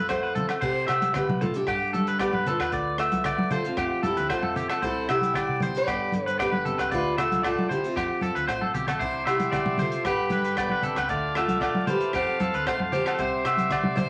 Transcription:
Already playing: F2 F4
0.09 A3 A4 C5, kick, cross-stick, closed hi-hat, low agogo
0.23 B4
0.35 F3 C4 A4, closed hi-hat, high conga, low conga
0.49 muted clean electric guitar stroke, cross-stick, closed hi-hat, low agogo
0.61 C3 G4 C5, kick, crash
0.87 C3 E3 E5, cross-stick, closed hi-hat, low agogo
1.02 closed hi-hat, high conga
1.14 B2 G4 B4, muted clean electric guitar stroke, kick, cross-stick, closed hi-hat, low conga, low agogo
1.28 C3, high conga
1.39 A2 F4 A4, muted clean electric guitar stroke, closed hi-hat, high conga, low conga
1.54 D4 G4, closed hi-hat
1.66 G2 G4, kick, cross-stick, closed hi-hat, low agogo
1.92 D3 G3 A4, closed hi-hat, high conga
2.07 B4, closed hi-hat
2.19 B3 G4 B4 D5, kick, cross-stick, closed hi-hat, low agogo
2.33 G2 B4, high conga
2.45 D4 F4 A4 B4, closed hi-hat, low conga
2.60 D#2 B4, cross-stick, closed hi-hat, low agogo
2.72 D2 D3 D5, kick, closed hi-hat
2.98 A3 E5, cross-stick, closed hi-hat, low agogo
3.12 C2, closed hi-hat, high conga
3.24 D4 D5, kick, cross-stick, closed hi-hat, low conga, low agogo
3.38 high conga
3.50 F4 A4 C5, closed hi-hat, high conga, low conga
3.64 C4 F4, closed hi-hat
3.76 F2 F3 A3 C4 G4, kick, cross-stick, closed hi-hat, low agogo
4.02 F2 F3 G4 A4, closed hi-hat, high conga
4.06 E4
4.17 D2 B4, closed hi-hat
4.29 A3 F4 A4 C5, kick, cross-stick, closed hi-hat, low agogo
4.42 F2 A4, high conga
4.55 C4 G4, closed hi-hat, low conga
4.70 A4, cross-stick, closed hi-hat, low agogo
4.82 C2 C3 E4 A4 C5, kick, closed hi-hat
5.08 C3 E3 E4 G4 E5, cross-stick, closed hi-hat, low agogo
5.21 closed hi-hat, high conga
5.34 G3 D5, kick, cross-stick, closed hi-hat, low conga, low agogo
5.48 C3
5.60 B3 C5, closed hi-hat, high conga, low conga
5.74 D4 B4 D5, closed hi-hat
5.86 G1 G2 D3 B3 D4 G4, kick, cross-stick, closed hi-hat, low agogo
6.12 G2 D3, closed hi-hat, high conga
6.26 B4 C5, closed hi-hat
6.39 B2 G4 B4 D5, kick, cross-stick, closed hi-hat, low agogo
6.51 G1 B4, high conga
6.65 C3 A4, closed hi-hat, low conga
6.78 C2 B4, cross-stick, closed hi-hat, low agogo
6.91 D2 D3 A3 D4 F4 D5, kick, closed hi-hat
6.95 B4
7.17 A3 F4 A4 E5, cross-stick, closed hi-hat, low conga, low agogo
7.31 C2, closed hi-hat, high conga
7.43 D3 F4 A4 D5, kick, cross-stick, closed hi-hat, low agogo
7.58 high conga
7.69 E3 E4 G4 C5, closed hi-hat, low conga
7.84 C4 F4, closed hi-hat
7.96 F2 G4, kick, cross-stick, closed hi-hat, low agogo
8.21 F2 F3 A4, closed hi-hat, high conga
8.35 D2 B4, closed hi-hat
8.47 A1 A3 C5, kick, cross-stick, closed hi-hat, low agogo
8.61 A4, high conga
8.74 B1 C4 G4, closed hi-hat, low conga
8.87 A4, cross-stick, closed hi-hat, low conga, low agogo
8.99 C2 C3 E3 G3 D4 C5 E5 C6 D6, kick, closed hi-hat
9.03 E4
9.26 C3 E3 G4 E5, cross-stick, closed hi-hat, low agogo
9.30 E4
9.39 closed hi-hat, high conga
9.51 G3 D5, kick, cross-stick, closed hi-hat, low conga, low agogo
9.66 C3, high conga
9.78 D4 F4 A4 C5, closed hi-hat, high conga, low conga
9.92 closed hi-hat
10.05 G1 G2 G4 B4 G5 B5, kick, cross-stick, closed hi-hat, low agogo
10.30 G2 D3 B4, closed hi-hat, high conga
10.44 B4, closed hi-hat
10.57 B2 B4 D5, kick, cross-stick, closed hi-hat, low agogo
10.69 G1 B4, high conga
10.82 C3 A4, closed hi-hat, low conga
10.96 C#2 B4, cross-stick, closed hi-hat, low agogo
11.09 D2 D3 A3 D4 F4 D5 F5 A5, kick, closed hi-hat
11.35 A3 F4 A4 E5, cross-stick, closed hi-hat, low agogo
11.48 C2, closed hi-hat, high conga
11.61 D3 D5, kick, cross-stick, closed hi-hat, low conga, low agogo
11.75 high conga
11.87 E3 G4 B4 C5, closed hi-hat, high conga, low conga
12.01 closed hi-hat
12.13 F2 G4 A4 C5 A5 C6, kick, cross-stick, closed hi-hat, low agogo
12.40 F2 F3 A4, closed hi-hat, high conga
12.54 D2 B4, closed hi-hat
12.66 A3 A4 C5, kick, cross-stick, closed hi-hat, low agogo
12.80 F2, muted clean electric guitar stroke, high conga
12.92 C4 G4 C5, closed hi-hat, low conga
13.06 A4, cross-stick, closed hi-hat, low agogo
13.18 C2 C3 C5 E5 D6, kick, closed hi-hat
13.45 C3 E5, cross-stick, closed hi-hat, low agogo
13.57 closed hi-hat, high conga
13.70 G3 D5, kick, cross-stick, closed hi-hat, low conga, low agogo
13.83 C3, high conga
13.96 D4 C5 E5, closed hi-hat, high conga, low conga

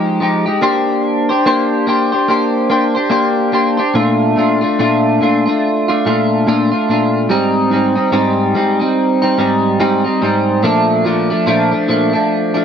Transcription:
Already playing: F3 G#3 D#4 G4
0.20 F3 G#3 D#4 G4
0.46 G#3 D#4 G4
0.61 A#3 D4 G4 C5
1.29 D4 G4 C5
1.46 A#3 D4 G4 C5
1.87 A#3 D4 G4 C5
2.12 D4 G4 C5
2.28 A#3 D4 G4 C5
2.70 A#3 D4 G4 C5
2.95 D4 G4 C5
3.10 A#3 D4 G4 C5
3.52 A#3 D4 G4 C5
3.77 D4 G4 C5
3.94 A#2 A3 D4 F4
4.36 A#2 A3 D4 F4
4.61 A3 D4 F4
4.79 A#2 A3 D4 F4
5.21 A#2 A3 D4 F4
5.46 A3 D4 F4
5.88 A3 D4 F4
6.05 A#2 A3 D4 F4
6.47 A#2 A3 D4 F4
6.71 A3 D4 F4
6.89 A#2 A3 D4 F4
7.29 G#2 G3 C4 D#4
7.71 G#2 G3 C4 D#4
7.95 G3 C4 D#4
8.12 G#2 G3 C4 D#4
8.55 G#2 G3 C4 D#4
8.80 G3 C4 D#4
9.22 G3 C4 D#4
9.38 G#2 G3 C4 D#4
9.80 G#2 G3 C4 D#4
10.04 G3 C4 D#4
10.22 G#2 G3 C4 D#4
10.63 A#2 F3 A3 D4
11.04 A#2 F3 A3 D4
11.30 F3 A3 D4
11.46 A#2 F3 A3 D4
11.71 F3 A3 D4
11.88 A#2 F3 A3 D4
12.13 F3 A3 D4
12.54 F3 A3 D4

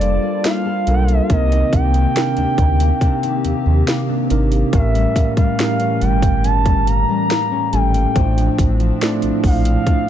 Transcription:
Already playing: F1 G3 A#3 D4 F4 A4 C5 D5 A5
0.01 F4, closed hi-hat
0.23 A#3
0.44 F4 F5, snare, closed hi-hat
0.66 A4
0.87 B1 G3 A#3 D4 F4 A4 A#4, closed hi-hat
0.94 G5
1.03 F5
1.08 F4, closed hi-hat
1.12 D#5
1.22 F5
1.30 C2 C3 A#3 C4 D#4 G4 A#4 D#5, kick, closed hi-hat
1.51 D#3, closed hi-hat
1.73 C2 A#3 G5, kick, closed hi-hat
1.94 D#3, closed hi-hat
2.16 C3 A#3 C4 D4 D#4 A#4, snare, closed hi-hat
2.37 D2 D4, closed hi-hat
2.58 D2, kick, closed hi-hat
2.80 A#3, closed hi-hat
3.01 C3 D4, kick, closed hi-hat
3.23 D#3, closed hi-hat
3.44 D#2 A#3, closed hi-hat
3.66 D#2 D#3
3.87 A#3, snare, closed hi-hat
4.09 D4
4.30 G#1 C3 D#3 C4 D4 D#4 A#4, closed hi-hat
4.51 A#3, closed hi-hat
4.73 A1 A2 E3 G3 A3 C#4 G4 A#4 E5, kick, closed hi-hat
4.94 G3, closed hi-hat
5.16 A#3, kick, closed hi-hat
5.37 G3 F5, kick, closed hi-hat
5.59 A2 A3 A#3 C#4 G4 A#4, snare, closed hi-hat
5.80 C#4, closed hi-hat
6.01 G1 G3 G5, closed hi-hat
6.22 A#3, kick, closed hi-hat
6.44 C#4 A5, closed hi-hat
6.66 G3, kick, closed hi-hat
6.87 A#3 A#5, closed hi-hat
7.09 G3
7.30 A#3, snare, closed hi-hat
7.52 C#4
7.73 G#1 A2 G3 A3 C#4 G4 A4 G5, closed hi-hat
7.94 A#3, closed hi-hat
8.16 A1 A2 F3 A3 C4 D4 F4 C5, kick, closed hi-hat
8.37 F3, closed hi-hat
8.58 A1 C4, kick, closed hi-hat
8.80 F3, closed hi-hat
9.01 A2 A3 C4 D4 E4 D5, snare, closed hi-hat
9.09 F4
9.22 A#1 D4, closed hi-hat
9.44 A#1 F3 F5, kick, open hi-hat
9.65 C4, closed hi-hat
9.87 A2 D4, kick, closed hi-hat

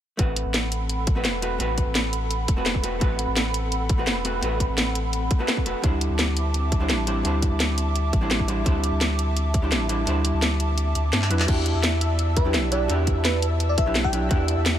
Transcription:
0.17 A1 A3 C4 F#4 A4 B4 F#5 B5, kick, closed hi-hat
0.36 closed hi-hat
0.45 A1
0.54 snare, closed hi-hat
0.72 closed hi-hat
0.89 closed hi-hat
1.07 kick, closed hi-hat
1.15 A3 C4 F#4 B4
1.25 E1, snare, closed hi-hat
1.42 A3 C4 F#4 B4, closed hi-hat
1.58 A1 A3 C4 F#4 B4, closed hi-hat
1.78 kick, closed hi-hat
1.86 A1
1.95 snare, closed hi-hat
2.13 closed hi-hat
2.31 closed hi-hat
2.48 E1, kick, closed hi-hat
2.56 A3 C4 F#4 B4
2.66 snare, closed hi-hat
2.75 kick
2.83 A3 C4 F#4 B4, closed hi-hat
3.00 A1 A3 C4 F#4 B4, kick, closed hi-hat
3.19 closed hi-hat
3.28 A1
3.37 snare, closed hi-hat
3.54 closed hi-hat
3.72 closed hi-hat
3.89 kick, closed hi-hat
3.98 A3 C4 F#4 B4
4.07 E1, snare, closed hi-hat
4.24 A3 C4 F#4 B4, closed hi-hat
4.41 A1 A3 C4 F#4 B4, closed hi-hat
4.60 kick, closed hi-hat
4.69 A1
4.78 snare, closed hi-hat
4.95 closed hi-hat
5.13 closed hi-hat
5.31 kick, closed hi-hat
5.39 A3 C4 F#4 B4
5.48 snare, closed hi-hat
5.57 kick
5.65 E1 A3 C4 F#4 B4, closed hi-hat
5.82 D2 G3 D4 E4 C5 E5 A5 D6, kick, closed hi-hat
6.01 closed hi-hat
6.10 D2
6.19 snare, closed hi-hat
6.37 closed hi-hat
6.54 closed hi-hat
6.72 kick, closed hi-hat
6.80 G3 D4 E4 C5
6.89 A1, snare, closed hi-hat
7.07 G3 D4 E4 C5, closed hi-hat
7.23 D2 G3 D4 E4 C5, closed hi-hat
7.42 kick, closed hi-hat
7.51 D2
7.60 snare, closed hi-hat
7.78 closed hi-hat
7.96 closed hi-hat
8.13 A1, kick, closed hi-hat
8.21 G3 D4 E4 C5
8.31 snare, closed hi-hat
8.40 kick
8.48 G3 D4 E4 C5, closed hi-hat
8.64 D2 G3 D4 E4 C5, kick, closed hi-hat
8.84 closed hi-hat
8.92 D2
9.01 snare, closed hi-hat
9.19 closed hi-hat
9.37 closed hi-hat
9.54 kick, closed hi-hat
9.62 G3 D4 E4 C5
9.72 A1, snare, closed hi-hat
9.89 G3 D4 E4 C5, closed hi-hat
10.05 D2 G3 D4 E4 C5, closed hi-hat
10.25 closed hi-hat
10.34 D2
10.42 snare, closed hi-hat
10.60 closed hi-hat
10.78 closed hi-hat
10.95 D2, closed hi-hat
11.13 G2, snare, closed hi-hat
11.22 clap
11.30 E2 F#3 D4 E4 B4 D5 E5 E6, closed hi-hat
11.39 clap
11.46 E2 D4 E4 F#4 G4, kick, closed hi-hat, crash
11.66 closed hi-hat
11.75 E2
11.84 snare, closed hi-hat
12.01 closed hi-hat
12.19 closed hi-hat
12.37 B4, kick, closed hi-hat
12.45 F#3 D4 E4 G4
12.54 B1, snare, closed hi-hat
12.71 F#3 D4 E4 G4 D5, closed hi-hat
12.88 E2 D4 E4 F#4 G4, closed hi-hat
13.07 kick, closed hi-hat
13.16 E2
13.25 B4, snare, closed hi-hat
13.42 closed hi-hat
13.60 closed hi-hat
13.69 D5
13.78 B1 E5, kick, closed hi-hat
13.86 F#3 D4 E4 G4
13.95 snare, closed hi-hat
14.04 G5, kick
14.12 F#3 D4 E4 G4, closed hi-hat
14.29 E2 D4 E4 F#4 G4, kick, closed hi-hat
14.48 closed hi-hat
14.57 E2
14.66 snare, closed hi-hat

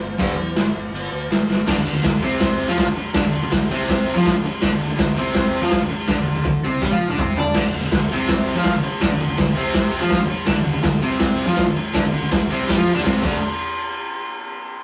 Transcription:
0.01 G1
0.18 G1 G2 D3 G3, kick, crash
0.36 E2
0.55 G1, snare, clap, crash
0.75 G1
0.92 G1, crash
1.12 D2
1.28 G1, snare, clap, crash
1.46 G1, snare
1.67 D2 D3 D4, kick, snare, crash
1.74 D2 D3
1.85 D2 D3, ride
1.93 D2 D3
2.03 D2 D3, kick, snare, clap, ride
2.21 C2 C3 C4, ride
2.40 kick, snare, ride
2.60 ride
2.68 F2 F3 F4
2.78 kick, snare, clap, ride
2.85 D2 D3
2.95 muted fingered electric bass stroke, muted distorted electric guitar stroke, ride
3.14 D2 D3 D4, kick, snare, ride
3.23 D2 D3
3.32 D2 D3, ride
3.42 D2 D3
3.51 D2 D3, kick, snare, clap, ride
3.70 C2 C3 C4, ride
3.89 kick, snare, ride
4.09 ride
4.16 F2 F3 F4
4.25 kick, snare, clap, ride
4.33 D2 D3
4.43 muted fingered electric bass stroke, muted distorted electric guitar stroke, ride
4.62 D2 D3 D4, kick, snare, ride
4.72 D2 D3
4.81 D2 D3, ride
4.90 D2 D3
4.98 D2 D3, kick, snare, clap, ride
5.17 C2 C3 C4, ride
5.34 kick, snare, ride
5.53 ride
5.62 F2 F3 F4
5.71 kick, snare, clap, ride
5.80 D2 D3
5.90 muted distorted electric guitar stroke, ride
6.07 D2 D3 D4, kick, snare
6.18 D2 D3
6.26 D2 D3
6.36 D2 D3
6.43 D2 D3, kick, clap, high tom
6.63 C2 C3 C4, high tom
6.81 G2 G3 G4, kick, mid tom
6.91 F2 F3 F4
7.00 clap
7.08 D2 D3 D4
7.17 C2 C3 C4, kick, clap, floor tom
7.37 D3 D4 D5, floor tom
7.54 D2 D3 D4, kick, snare, crash
7.63 D2 D3
7.72 D2 D3, ride
7.82 D2 D3
7.92 D2 D3, kick, snare, ride
8.10 C2 C3 C4, ride
8.28 kick, snare, ride
8.47 ride
8.54 F2 F3 F4
8.64 kick, snare, ride
8.74 D2 D3
8.83 muted distorted electric guitar stroke, muted fingered electric bass stroke, ride
9.00 D2 D3 D4, kick, snare, ride
9.12 D2 D3
9.20 D2 D3, ride
9.29 D2 D3
9.38 D2 D3, kick, snare, ride
9.56 C2 C3 C4, ride
9.74 kick, snare, ride
9.92 ride
10.00 F2 F3 F4
10.10 kick, snare, ride
10.18 D2 D3
10.27 muted fingered electric bass stroke, muted distorted electric guitar stroke, ride
10.45 D2 D3 D4, kick, snare, ride
10.54 D2 D3
10.63 D2 D3, ride
10.73 D2 D3
10.82 D2 D3, kick, snare, clap, ride
11.01 C2 C3 C4, ride
11.19 kick, snare, ride
11.38 ride
11.47 F2 F3 F4
11.57 kick, snare, clap, ride
11.65 D2 D3
11.74 muted fingered electric bass stroke, muted distorted electric guitar stroke, ride
11.93 D2 D3 D4, kick, snare, ride
12.03 D2 D3
12.12 D2 D3, ride
12.21 D2 D3
12.30 D3, kick, snare, clap, ride
12.49 C2 C3 C4, ride
12.67 G2 G3 G4, kick, snare, ride
12.76 F2 F3 F4
12.88 ride
12.94 D2 D3 D4
13.03 C2 C3 C4, kick, snare, clap, ride
13.23 D2 D3 A3 D4, kick, clap, crash

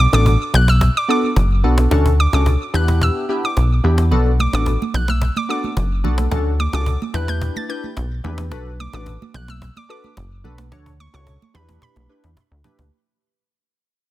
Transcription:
0.00 D6
0.13 A1 B3 D4 F#4 A4 D6, cajon slap
0.26 cajon bass
0.41 cajon slap
0.54 B1 F#6, cajon slap
0.68 E6, cajon slap
0.81 cajon bass
0.95 D6, cajon slap
1.08 B3 D4 F#4 A4 D6
1.23 cajon slap
1.36 F#1, cajon bass, cajon slap
1.51 cajon slap
1.64 B1 B3 D4 F#4 A4, cajon slap
1.78 cajon slap
1.91 D2 C#4 D4 F#4 A4, cajon bass
2.06 cajon bass
2.19 D6, cajon slap
2.33 C#2 C#4 D4 F#4 A4 D6, cajon slap
2.46 cajon bass
2.61 cajon slap
2.74 E2 B3 D4 E4 G4 F#6, cajon slap
2.88 cajon bass, cajon slap
3.01 E6, cajon bass
3.15 cajon slap
3.29 B3 D4 E4 G4, cajon slap
3.43 D6, cajon slap
3.57 B1, cajon bass, cajon slap
3.71 cajon slap
3.84 E2 B3 D4 E4 G4, cajon slap
3.98 cajon slap
4.11 B1 B3 D4 F#4 A4, cajon slap, low conga
4.26 cajon slap
4.40 D6, high conga
4.53 A1 B3 D4 F#4 A4 D6, cajon slap
4.66 cajon bass
4.81 cajon slap, high conga
4.94 B1 F#6, cajon slap, low conga
5.08 E6, cajon slap, high conga
5.22 cajon bass
5.35 D6, cajon slap, high conga
5.49 B3 D4 F#4 A4 D6
5.64 cajon slap, high conga
5.77 F#1, cajon bass, cajon slap
5.91 cajon slap
6.04 B1 B3 D4 F#4 A4, high conga, low conga
6.18 cajon slap, high conga
6.31 D2 C#4 D4 F#4 A4, cajon bass, low conga
6.46 cajon slap
6.59 D6, cajon slap, high conga
6.73 C#2 C#4 D4 F#4 A4 D6, cajon slap
6.86 cajon bass
7.01 cajon slap, high conga
7.14 E2 D4 E4 G4 B4 F#6, cajon slap, low conga
7.28 G6, cajon slap, high conga
7.41 cajon bass
7.55 A6, cajon slap, high conga
7.69 D4 E4 G4 B4 G6
7.83 cajon slap, high conga
7.97 B1, cajon bass, cajon slap
8.11 cajon slap
8.24 E2 D4 E4 G4 B4, cajon slap, high conga, low conga
8.38 cajon slap, high conga
8.51 B1 D4 F#4 A4 B4, cajon bass, low conga
8.66 cajon slap
8.79 D6, cajon slap, high conga
8.93 A1 D4 F#4 A4 B4 D6, cajon slap
9.06 cajon bass
9.21 cajon slap, high conga
9.34 B1 F#6, cajon slap, low conga
9.48 E6, cajon slap, high conga
9.62 cajon bass
9.76 D6, cajon slap, high conga
9.89 D4 F#4 A4 B4 D6
10.04 cajon slap, high conga
10.17 F#1, cajon bass, cajon slap
10.31 cajon slap
10.44 B1 D4 F#4 A4 B4, high conga, low conga
10.58 cajon slap, high conga
10.72 D2 D4 F#4 A4 C#5, cajon bass, low conga
10.86 cajon bass
11.00 C#6, high conga
11.13 C#2 D4 F#4 A4 C#5 C#6, cajon slap
11.27 cajon bass
11.41 cajon slap, high conga
11.54 E2 D4 E4 G4 B4 B5, cajon slap, low conga
11.69 cajon bass, cajon slap, high conga
11.82 B5, cajon bass, cajon slap
11.96 B1, cajon slap, high conga
12.09 D4 E4 G4 B4
12.24 E2, cajon slap, high conga
12.37 cajon bass
12.51 D2
12.64 D4 E4 G4 B4, cajon bass, high conga, low conga
12.79 D2, cajon bass, high conga

